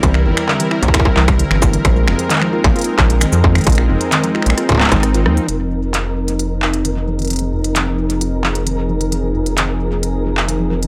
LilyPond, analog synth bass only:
\new Staff \with { instrumentName = "Analog synth bass" } { \clef bass \time 4/4 \key f \minor \tempo 4 = 132 c,8 g,,16 r4 c,16 r8 c,8 r16 g,,8 r16 | bes,,8 f,,16 r4 bes,,16 r8 bes,,8 r16 f,8 r16 | bes,,8 f,,16 r4 bes,,16 r8. aes,,8. ees,16 r16 | f,,1~ |
f,,1~ | f,,1 | }